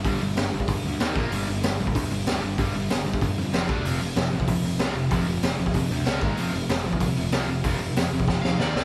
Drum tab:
HH |o---o---o---o---|o---o---o---o---|o---o---o---o---|o---o---o---o---|
SD |----o-------o---|----o-------o---|----o-------o---|----o-------o---|
BD |o------oo-----o-|-------oo-------|o------oo-----o-|-------oo-------|

HH |o---o---o---o---|o---o---o---o---|o---o-----------|
SD |----o-------o---|----o-------o---|----o---o-o-o-o-|
BD |o------oo-----o-|-------oo-------|o------oo-------|